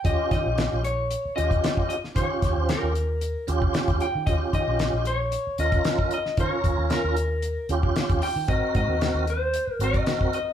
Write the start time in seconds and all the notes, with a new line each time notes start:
0.04 D#2 C#4 F4 G4 D#5, kick, closed hi-hat
0.31 D#3 D#5, kick, snare, closed hi-hat
0.46 A#1
0.58 snare, closed hi-hat
0.73 A#1
0.84 C#5, closed hi-hat
1.11 closed hi-hat
1.25 muted fingered electric bass stroke
1.36 D#2 C#4 F4 G4 D#5, closed hi-hat
1.51 kick, closed hi-hat
1.64 snare, closed hi-hat
1.77 kick
1.89 D#5, closed hi-hat
2.04 snare
2.15 D#3 C#4 F4 G4 C#5, kick, closed hi-hat
2.42 D#2, kick, snare, closed hi-hat
2.56 D#2 C5
2.69 A#4, snare, closed hi-hat
2.83 D#2
2.95 closed hi-hat
3.21 closed hi-hat
3.47 D#2 C#4 F4 G4, closed hi-hat
3.62 kick
3.74 snare, closed hi-hat
3.88 D#2, kick, closed hi-hat
4.00 G5, closed hi-hat
4.15 D#3
4.26 D#2 C#4 F4 G4 D#5, kick, closed hi-hat
4.53 D#3 D#5, kick, closed hi-hat
4.68 A#1
4.79 snare, closed hi-hat
4.93 A#1
5.05 C#5, closed hi-hat
5.32 closed hi-hat
5.47 muted fingered electric bass stroke
5.58 D#2 C#4 F4 A#4 D#5, closed hi-hat
5.72 kick, closed hi-hat
5.84 snare, closed hi-hat
5.99 kick
6.11 D#5, closed hi-hat
6.26 snare
6.37 D#3 C#4 F4 A#4 C#5, kick, closed hi-hat
6.64 D#2, kick, closed hi-hat
6.78 D#2
6.90 A#4, snare, closed hi-hat
7.04 D#2
7.16 closed hi-hat
7.42 closed hi-hat
7.69 D#2 C#4 F4 G4, closed hi-hat
7.83 kick
7.96 snare, closed hi-hat
8.09 D#2, kick, closed hi-hat
8.22 G5, open hi-hat
8.36 D#3
8.48 G#1 C4 F#4 A#4 D#5, kick, closed hi-hat
8.75 G#2 D#5, kick, closed hi-hat
8.88 D#2
9.01 snare, closed hi-hat
9.14 D#2
9.27 C5, closed hi-hat
9.54 closed hi-hat
9.67 muted fingered electric bass stroke
9.72 A#4
9.79 G#1 C4 F#4 A#4, closed hi-hat
9.84 D#5
9.94 kick, closed hi-hat
10.06 snare, closed hi-hat
10.21 kick
10.33 D#5, closed hi-hat